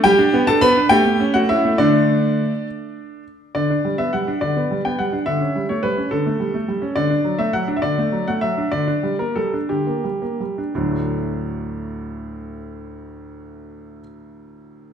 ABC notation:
X:1
M:6/8
L:1/16
Q:3/8=68
K:D
V:1 name="Grand piano"
[Gg]3 [Aa] [Bb]2 [Gg]3 [Ff] [Ee]2 | [Dd]8- [Dd]2 z2 | d3 e f2 d3 g f2 | e3 c B2 A6 |
d3 e f3/2 e/2 d3 f e2 | d3 _B A2 G6 | [D,,A,,F,A,D]12- | [D,,A,,F,A,D]12 |]
V:2 name="Grand piano"
G, D B, D B, D A, A, C A, C A, | [D,A,]6 z6 | D, D G, B, G, D D, B, G, B, G, D | D, C G, A, G, C D, A, G, A, G, C |
D, D F, A, F, D D, A, F, A, F, D | D, D G, _B, G, D D, B, G, B, G, D | z12 | z12 |]